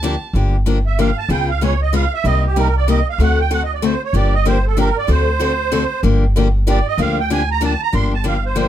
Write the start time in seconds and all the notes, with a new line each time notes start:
Already playing: D2 A5
0.03 D3 F3 A#3 D4 G4
0.33 G1 D3 F3 A#3 D4 G4
0.66 D3 F3 A#3 D4 G4
0.87 E5
0.99 D3 F3 A#3 D4 G4 F5
1.18 A5
1.29 C#2 C#3 G#3 B3 F4 G#4 G5
1.50 F5
1.61 C#3 G#3 B3 F4 G#4 C#5
1.82 D#5
1.93 C#3 G#3 B3 F4 G#4 F5
2.14 E5
2.24 C2 C3 G3 A#3 D#4 G4 D#5
2.46 G4
2.56 C3 G3 A#3 D#4 G4 A#4
2.77 D5
2.88 C3 G3 A#3 D#4 G4 D#5
3.10 F5
3.18 D2 D3 A3 C4 F#4 A4 F#5
3.40 G5
3.50 D3 A3 C4 F#4 A4 F#5
3.64 D#5
3.74 D5
3.82 D3 A3 C4 F#4 A4 C5
4.04 C#5
4.13 G1 D3 F3 A#3 D4 G4 D5
4.35 D#5
4.45 D3 F3 A#3 D4 G4 C5
4.67 A4
4.77 D3 F3 A#3 D4 G4 A#4
4.98 D5
5.07 D2 D3 A3 C4 F#4 A4 C5
5.40 D3 A3 C4 F#4 A4
5.72 D3 A3 C4 F#4 A4
6.03 G1 D3 F3 A#3 D4 G4
6.36 D3 F3 A#3 D4 G4
6.67 D3 F3 A#3 D4 G4 D5
6.88 D#5
6.98 D2 D3 F3 A#3 D4 G4 F5
7.19 G5
7.30 D3 F3 A#3 D4 G4 G#5
7.52 A#5
7.61 D3 F3 A#3 D4 G4 A5
7.83 A#5
7.92 G1 D3 F3 A#3 D4 G4 C6
8.14 A5
8.24 D3 F3 A#3 D4 G4 F5
8.45 C5
8.56 D3 F3 A#3 D4 G4